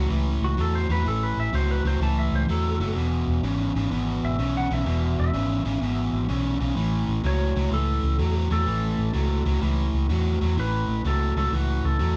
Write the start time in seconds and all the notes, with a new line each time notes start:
0.10 C#2 A2 E3
0.42 C#2 F#4
0.57 E2 A2 F#3 A4
0.75 C5
0.89 E2 A2 F#3 B4
1.04 A1 A2 E3 A4
1.23 B4
1.37 A1 E5
1.53 C#2 A2 F#3 C5
1.71 B4
1.84 C#2 A2 F#3 C5
2.00 C#2 A2 E3 A5
2.19 E5
2.32 C#2 C5
2.47 E2 A2 F#3 A4
2.80 F#1 A2 F#3
2.95 E1 E2 B2
3.27 E1
3.43 G#1 E2 C#3
3.75 G#1 E2 C#3
3.91 G#1 E2 B2
4.23 G#1 E5
4.39 B1 E2 C#3
4.57 F#5
4.71 B1 E2 C#3 E5
4.85 E1 E2 B2
5.19 E1 E5
5.34 G#1 E2 C#3
5.65 G#1 E2 C#3
5.81 G#1 E2 B2
6.13 G#1
6.28 B1 E2 C#3
6.60 B1 E2 C#3
6.76 A1 A2 E3
7.08 A1
7.24 C#2 A2 F#3 C#5
7.56 C#2 A2 F#3
7.71 C#2 A2 E3 A4
8.03 C#2
8.19 E2 A2 F#3
8.37 F#4
8.50 E2 A2 F#3 A4
8.66 A1 A2 E3
8.99 A1
9.13 C#2 A2 F#3
9.45 C#2 A2 F#3
9.61 C#2 A2 E3
9.93 C#2
10.09 E2 A2 F#3
10.41 E2 A2 F#3
10.57 A1 A2 E3 B4
10.89 A1
11.05 C#2 A2 F#3 A4
11.36 C#2 A2 F#3 A4
11.52 C#2 A2 E3 F#4
11.84 C#2 A4
11.99 E2 A2 F#3